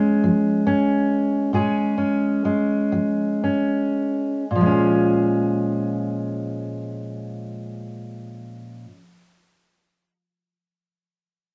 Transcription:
0.00 1.53 G#3 soft
0.00 0.66 C#4 soft
0.00 1.54 G#4 soft
0.24 0.99 F3 soft
0.67 1.54 C#4 soft
1.53 2.34 A#2 soft
1.53 2.44 G#3 soft
1.53 1.97 C#4 soft
1.53 4.44 G#4 soft
1.98 3.42 C#4 soft
2.45 4.60 G#3 soft
2.92 3.84 F3 soft
3.44 4.44 C#4 soft
4.51 8.85 A#2 soft
4.55 8.90 F3 soft
4.61 8.95 G#3 soft
4.66 9.00 C#4 soft
4.71 9.05 G#4 soft

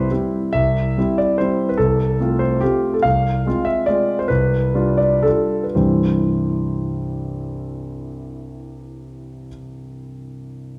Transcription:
0.00 0.12 C2 soft
0.00 0.11 G3 soft
0.00 0.11 C4 soft
0.00 0.11 E4 soft
0.00 0.13 G4 medium
0.00 0.12 B4 medium
0.00 0.12 C5 medium
0.11 0.50 G3 soft
0.11 0.51 C4 soft
0.11 0.51 E4 soft
0.53 0.96 C2 soft
0.53 1.18 E5 medium
0.98 1.36 G3 soft
0.98 1.36 C4 soft
0.98 1.37 E4 soft
1.18 1.39 D5 medium
1.38 1.76 G3 soft
1.38 1.76 C4 soft
1.38 1.76 E4 soft
1.38 1.69 C5 medium
1.69 1.79 B4 soft
1.77 2.18 C2 soft
1.77 2.40 A4 medium
2.20 2.58 A3 soft
2.20 2.58 C4 soft
2.20 2.59 F4 soft
2.39 2.61 C5 medium
2.61 3.02 A3 soft
2.61 3.02 C4 soft
2.61 3.02 F4 soft
2.61 2.94 G4 medium
2.94 3.05 A4 soft
3.02 3.44 C2 soft
3.02 3.66 F5 medium
3.46 3.84 G#3 soft
3.46 3.85 C4 soft
3.46 3.85 F4 soft
3.65 3.87 E5 medium
3.86 4.26 G#3 soft
3.86 4.26 C4 soft
3.86 4.26 F4 soft
3.86 4.19 D5 medium
4.19 4.30 C5 soft
4.28 4.74 C2 soft
4.28 4.99 B4 medium
4.74 5.21 G3 soft
4.74 5.21 D4 soft
4.74 5.22 F4 soft
4.97 5.24 D5 medium
5.23 5.73 G3 soft
5.23 5.73 D4 soft
5.23 5.74 F4 soft
5.23 5.64 A4 medium
5.64 5.77 B4 soft
5.75 9.47 C2 soft
5.75 9.48 G2 soft
5.75 9.48 E3 soft
5.75 9.48 G3 soft
5.75 9.49 C4 soft
5.75 9.49 E4 soft
5.75 9.47 C5 soft

